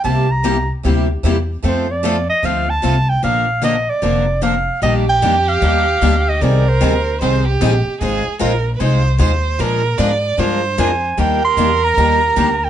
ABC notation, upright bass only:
X:1
M:4/4
L:1/8
Q:"Swing" 1/4=151
K:Bb
V:1 name="Upright bass" clef=bass
C,,4 D,,2 =E,,2 | F,,4 D,,2 C,,2 | B,,,4 F,,,4 | [K:Eb] B,,,2 F,,2 E,,2 D,,2 |
C,,2 D,,2 C,,2 B,,, z | A,,, z B,,,2 C,,2 E,,2 | B,,2 A,,2 G,,2 F,,2 | E,,2 _F,,2 E,,2 D,,2 |]